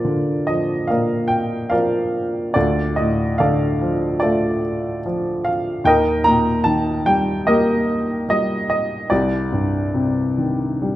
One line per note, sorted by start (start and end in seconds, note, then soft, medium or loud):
0.00 0.89 A#2 medium
0.00 0.48 F3 soft
0.00 1.28 F4 soft
0.00 0.89 A#4 soft
0.00 0.43 D5 medium
0.05 1.68 D3 soft
0.47 1.70 F3 soft
0.47 0.86 D#5 medium
0.87 2.52 A#2 soft
0.87 1.70 A#4 soft
0.87 1.70 D5 soft
0.87 1.27 F5 medium
1.28 1.72 G5 medium
1.70 2.53 F3 soft
1.70 2.52 A#4 medium
1.70 2.51 D5 soft
1.70 2.57 F5 medium
2.54 5.81 D2 medium
2.54 4.17 F4 medium
2.54 3.38 A4 soft
2.54 2.94 D5 medium
2.96 3.40 D#5 medium
3.00 4.59 A2 soft
3.38 5.00 D3 soft
3.38 4.21 A4 medium
3.38 4.18 D5 medium
3.38 4.17 F5 medium
3.81 5.04 F3 soft
4.20 5.81 A3 medium
4.20 5.81 F4 medium
4.20 5.81 A4 soft
4.20 5.47 D5 medium
5.06 5.84 F3 soft
5.45 5.82 F5 medium
5.84 9.06 D#2 medium
5.84 7.44 A#4 medium
5.84 7.44 D#5 medium
5.84 6.23 G5 medium
6.24 7.84 A#2 medium
6.24 6.62 A#5 medium
6.64 8.25 D#3 medium
6.64 7.06 A5 medium
7.06 8.27 G3 medium
7.06 7.48 G5 medium
7.47 9.07 A#3 medium
7.47 9.08 G4 medium
7.47 9.07 A#4 medium
7.47 8.25 D#5 medium
8.29 9.08 G3 soft
8.29 8.67 D#5 medium
8.70 9.12 D#5 medium
9.10 10.96 C2 medium
9.10 10.96 G4 soft
9.10 10.96 D5 medium
9.52 10.96 G2 soft
9.94 10.96 C3 medium
10.38 10.96 D#3 soft
10.82 10.96 G3 soft